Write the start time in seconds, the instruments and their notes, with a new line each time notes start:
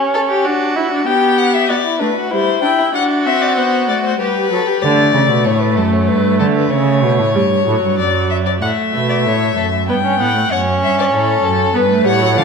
Already playing: viola C#4
0.14 violin A4
0.30 violin G4
0.45 viola D4, violin F#4
0.76 viola E4
0.92 viola D4
1.07 viola B3, violin G4 G5
1.38 violin F#5
1.54 violin E5
1.69 viola B3, violin F#4 D5
1.85 violin E4
2.00 viola A3, violin D4 B4
2.17 violin F#4
2.31 viola G3, violin E4 C5
2.62 violin D4 G5, viola E4
2.78 violin E4
2.94 viola D4, violin F#4 F#5
3.26 viola C4, violin E5
3.42 violin D5
3.57 viola B3, violin C5
3.88 viola A3, violin D5
4.03 violin C5
4.19 viola G3, violin G4 B4
4.51 viola F#3, violin A4
4.67 violin G4
4.82 cello D3, viola A3, violin D5
5.14 cello C#3
5.30 cello B2
5.44 cello A2, violin C#5
5.59 violin B4
5.76 cello F#2, violin A4
5.92 violin C#5
6.07 cello G2, violin B4
6.39 cello D3, violin A4
6.55 violin B4
6.70 cello C#3, violin C#5
7.03 cello B2
7.19 cello A2
7.35 cello G2, viola G3
7.67 cello A2, viola F#3
7.82 cello G2
7.98 cello F#2, violin D5
8.30 violin E5
8.46 violin D5
8.61 cello A2, viola A3, violin E5 F#5
8.93 cello B2, violin E5
9.09 violin D5
9.25 cello A2, violin C#5
9.57 cello F#2, violin A4
9.89 cello G2, viola B3, violin B4 G5
10.04 viola C#4
10.19 cello A2, viola B3, violin F#5
10.35 viola A3
10.51 cello F#2, viola C#4, violin C#5 F#5
10.82 cello G2, violin E5
10.98 violin D5
11.13 cello A2, violin A4 C#5
11.44 cello F#2, violin A4
11.74 cello G2, viola B3, violin B4
11.90 viola A3
12.05 cello A2, viola G3, violin C#5 F#5
12.21 viola F#3
12.37 cello D3, viola F3, violin D5 F5